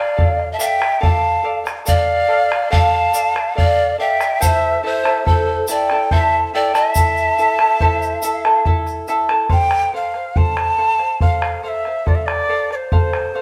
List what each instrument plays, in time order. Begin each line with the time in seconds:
Already playing: charango D5 F5, pan flute D5, quena F5
0.17 charango A4 D5 F5, bombo low
0.40 bombo rim
0.52 pan flute E5, quena A5
0.58 charango A4 D5 F5, pan flute E5, quena G5, bombo rim, shaker
0.80 charango D5 F5, bombo rim
1.00 charango A4 D5 F5, pan flute F5, quena A5, bombo low
1.43 charango A4 D5 F5
1.64 charango D5 F5, bombo rim, shaker
1.85 charango A4 D5 F5, pan flute D5, quena F5, bombo low, shaker
2.28 charango A4 D5 F5, bombo rim
2.50 charango D5 F5, bombo rim
2.70 charango A4 D5 F5, pan flute F5, quena A5, bombo low
2.95 bombo rim
3.13 charango A4 D5 F5, bombo rim, shaker
3.34 charango D5 F5, bombo rim
3.55 charango A4 D5 F5, pan flute D5, quena F5, bombo low
3.98 charango A4 D5 F5, pan flute E5, quena G5
4.19 charango D5 F5, bombo rim, shaker
4.40 charango E4 A4 C5 E5 A5, pan flute C5, quena F5, bombo low, shaker
4.47 quena E5
4.83 charango E4 A4 E5 A5, pan flute C5, quena E5, bombo rim
5.04 charango E4 A4 A5, bombo rim
5.25 charango E4 A4 E5 A5, pan flute A4, quena C5, bombo low
5.48 bombo rim
5.68 charango E4 A4 E5 A5, pan flute D5, quena G#5, bombo rim, shaker
5.74 quena G5
5.90 charango E4 A4 A5, bombo rim
6.11 charango E4 A4 C5 E5 A5, pan flute E5, quena A5, bombo low
6.54 charango E4 A4 E5 A5, pan flute D5, quena G5
6.74 charango E4 A4 A5, pan flute E5, quena A5, bombo rim, shaker
6.95 charango E4 A4 E5 A5, bombo low, shaker
7.17 shaker
7.38 charango E4 A4 E5 A5, shaker
7.59 charango E4 A4 A5, bombo rim
7.80 charango E4 A4 C5 E5 A5, bombo low
8.02 shaker
8.22 charango E4 A4 E5 A5, shaker
8.45 charango E4 A4 A5, bombo rim
8.65 charango E4 A4 E5 A5, bombo low
8.87 bombo rim, shaker
9.08 charango E4 A4 E5 A5, bombo rim, shaker
9.29 charango E4 A4 A5, bombo rim
9.49 charango A4 C5 F5, quena G5, bombo rim, bombo low
9.71 bombo rim
9.93 charango A4 C5 F5, quena F5
10.14 charango C5 F5, bombo rim
10.36 charango A4 C5 F5, quena A5, bombo low
10.57 bombo rim
10.78 charango A4 C5 F5
10.99 charango C5 F5, bombo rim
11.21 charango A4 C5 F5, quena F5, bombo low
11.42 bombo rim
11.63 charango A4 C5 F5, quena F5
11.68 quena E5
11.85 charango C5 F5, bombo rim
12.06 charango A4 C5 F5, quena D5, bombo rim, bombo low
12.15 quena E5
12.22 quena D5 E5
12.28 bombo rim
12.49 charango A4 C5 F5
12.70 charango C5 F5, quena D5, bombo rim
12.75 quena C5
12.92 charango A4 C5 F5, bombo low
13.13 bombo rim
13.34 charango A4 C5 F5